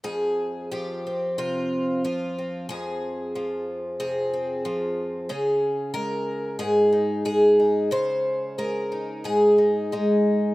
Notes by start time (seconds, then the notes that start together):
0.04 F2 G#4
0.72 F3 G4
1.07 C4
1.38 C3 F4
2.04 F3 F4
2.39 C4
2.69 F2 G#4
3.35 F3
4.00 C3 G#4
4.34 C4
4.65 F3
5.29 C#3 G#4
5.94 G#3 A#4
6.59 G#2 G#4
6.93 D#4
7.25 G#3 G#4
7.60 D#4
7.91 C#3 C5
8.58 G#3 A#4
8.92 D#4
9.24 G#2 G#4
9.58 D#4
9.92 G#3 D#4